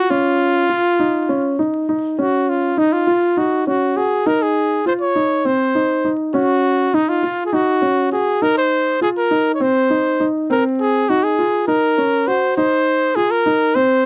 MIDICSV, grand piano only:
0, 0, Header, 1, 2, 480
1, 0, Start_track
1, 0, Tempo, 593472
1, 85, Time_signature, 7, 3, 24, 8
1, 11370, End_track
2, 0, Start_track
2, 0, Title_t, "Grand piano"
2, 0, Program_c, 0, 0
2, 83, Note_on_c, 0, 61, 84
2, 505, Note_off_c, 0, 61, 0
2, 562, Note_on_c, 0, 65, 71
2, 773, Note_off_c, 0, 65, 0
2, 805, Note_on_c, 0, 63, 72
2, 1015, Note_off_c, 0, 63, 0
2, 1044, Note_on_c, 0, 61, 81
2, 1254, Note_off_c, 0, 61, 0
2, 1285, Note_on_c, 0, 63, 71
2, 1495, Note_off_c, 0, 63, 0
2, 1527, Note_on_c, 0, 63, 74
2, 1736, Note_off_c, 0, 63, 0
2, 1768, Note_on_c, 0, 61, 74
2, 2188, Note_off_c, 0, 61, 0
2, 2243, Note_on_c, 0, 63, 67
2, 2455, Note_off_c, 0, 63, 0
2, 2483, Note_on_c, 0, 65, 70
2, 2695, Note_off_c, 0, 65, 0
2, 2725, Note_on_c, 0, 63, 70
2, 2936, Note_off_c, 0, 63, 0
2, 2968, Note_on_c, 0, 61, 66
2, 3178, Note_off_c, 0, 61, 0
2, 3207, Note_on_c, 0, 66, 72
2, 3417, Note_off_c, 0, 66, 0
2, 3448, Note_on_c, 0, 63, 78
2, 3870, Note_off_c, 0, 63, 0
2, 3929, Note_on_c, 0, 65, 67
2, 4139, Note_off_c, 0, 65, 0
2, 4169, Note_on_c, 0, 63, 68
2, 4379, Note_off_c, 0, 63, 0
2, 4408, Note_on_c, 0, 60, 70
2, 4619, Note_off_c, 0, 60, 0
2, 4651, Note_on_c, 0, 63, 68
2, 4861, Note_off_c, 0, 63, 0
2, 4890, Note_on_c, 0, 63, 63
2, 5100, Note_off_c, 0, 63, 0
2, 5127, Note_on_c, 0, 61, 82
2, 5550, Note_off_c, 0, 61, 0
2, 5609, Note_on_c, 0, 63, 73
2, 5821, Note_off_c, 0, 63, 0
2, 5847, Note_on_c, 0, 65, 70
2, 6060, Note_off_c, 0, 65, 0
2, 6088, Note_on_c, 0, 63, 80
2, 6300, Note_off_c, 0, 63, 0
2, 6324, Note_on_c, 0, 61, 65
2, 6538, Note_off_c, 0, 61, 0
2, 6567, Note_on_c, 0, 66, 68
2, 6780, Note_off_c, 0, 66, 0
2, 6809, Note_on_c, 0, 63, 78
2, 7232, Note_off_c, 0, 63, 0
2, 7289, Note_on_c, 0, 65, 70
2, 7501, Note_off_c, 0, 65, 0
2, 7529, Note_on_c, 0, 63, 68
2, 7741, Note_off_c, 0, 63, 0
2, 7767, Note_on_c, 0, 60, 72
2, 7980, Note_off_c, 0, 60, 0
2, 8009, Note_on_c, 0, 63, 68
2, 8221, Note_off_c, 0, 63, 0
2, 8250, Note_on_c, 0, 63, 68
2, 8462, Note_off_c, 0, 63, 0
2, 8491, Note_on_c, 0, 60, 77
2, 8913, Note_off_c, 0, 60, 0
2, 8973, Note_on_c, 0, 63, 65
2, 9183, Note_off_c, 0, 63, 0
2, 9210, Note_on_c, 0, 65, 65
2, 9421, Note_off_c, 0, 65, 0
2, 9445, Note_on_c, 0, 63, 78
2, 9658, Note_off_c, 0, 63, 0
2, 9689, Note_on_c, 0, 61, 68
2, 9900, Note_off_c, 0, 61, 0
2, 9926, Note_on_c, 0, 66, 67
2, 10139, Note_off_c, 0, 66, 0
2, 10169, Note_on_c, 0, 63, 83
2, 10590, Note_off_c, 0, 63, 0
2, 10648, Note_on_c, 0, 65, 66
2, 10858, Note_off_c, 0, 65, 0
2, 10886, Note_on_c, 0, 63, 72
2, 11097, Note_off_c, 0, 63, 0
2, 11124, Note_on_c, 0, 60, 78
2, 11335, Note_off_c, 0, 60, 0
2, 11370, End_track
0, 0, End_of_file